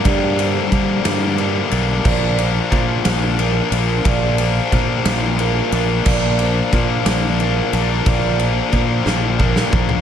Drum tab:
CC |------------|x-----------|------------|x-----------|
RD |x-x-x-x-x-x-|--x-x-x-x-x-|x-x-x-x-x-x-|--x-x-x-x-x-|
SD |------o-----|------o-----|------o-----|------o-----|
FT |------------|------------|------------|------------|
BD |o---o-------|o---o-------|o---o-------|o---o-------|

CC |------------|
RD |x-x-x-------|
SD |------o--o--|
FT |-----------o|
BD |o---o---o-o-|